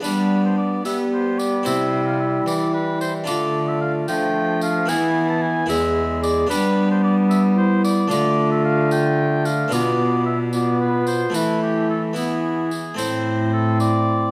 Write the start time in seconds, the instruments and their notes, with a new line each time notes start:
0.00 cello G3, harpsichord B3 D4 B4, trombone B3, recorder D4, oboe B4, tambourine
0.05 harpsichord G3
0.45 oboe C5
0.58 oboe D5
0.85 trombone G3, harpsichord B3, cello B3, recorder G4, oboe E5, tambourine
1.13 oboe C5
1.39 oboe D5, tambourine
1.63 harpsichord C3 E4 C5, cello C3, recorder E4, oboe E5, tambourine
2.07 oboe F5
2.20 oboe E5
2.46 harpsichord E3, cello E3, oboe D5, tambourine
2.74 oboe B4
3.01 oboe C5, tambourine
3.24 harpsichord D3 D4 F4 A4, cello D3, trombone A3, oboe D5, tambourine
3.29 recorder F4
3.68 oboe E5
3.81 oboe F5
4.08 cello F3, harpsichord F3, trombone A3, recorder D4, oboe G5, tambourine
4.61 oboe F5, tambourine
4.86 cello E3, harpsichord B3 E4 G#4, trombone B3, oboe G#5, tambourine
4.90 harpsichord E3, recorder E4
5.29 oboe A5
5.42 oboe G#5
5.66 harpsichord E2 B3 E4 G#4, cello E2, trombone G#3, recorder G#4, oboe E5, tambourine
6.23 oboe D5, tambourine
6.47 cello G3, harpsichord G3 B3 D4 G4, recorder D4, oboe B4
6.51 trombone B3, tambourine
6.91 oboe C5
7.03 oboe D5
7.30 oboe E5, tambourine
7.56 recorder E4, oboe C5
7.84 oboe D5, tambourine
8.08 cello D3, harpsichord D3 A3 D4 F4, trombone A3, recorder F4, oboe D5, tambourine
8.52 oboe E5
8.65 oboe F5
8.91 oboe G5, tambourine
9.45 oboe F5, tambourine
9.68 harpsichord B2 B3 D4 F4, tambourine
9.72 cello B2, trombone B3, recorder F4, oboe D5
10.26 oboe E5
10.53 trombone B3, recorder F4, oboe D5, tambourine
10.81 oboe B4
11.07 oboe C5, tambourine
11.30 harpsichord A3 E4
11.34 harpsichord E3, cello E3, trombone A3, recorder E4, oboe B4, tambourine
11.62 oboe G4
11.90 oboe A4
12.13 harpsichord B3 E4, trombone B3, recorder E4, oboe G#4, tambourine
12.71 tambourine
12.94 cello A2, harpsichord A3 C4 E4, recorder E4, oboe C5, tambourine
12.99 harpsichord A2, trombone C4
13.53 oboe A4
13.80 oboe D5, tambourine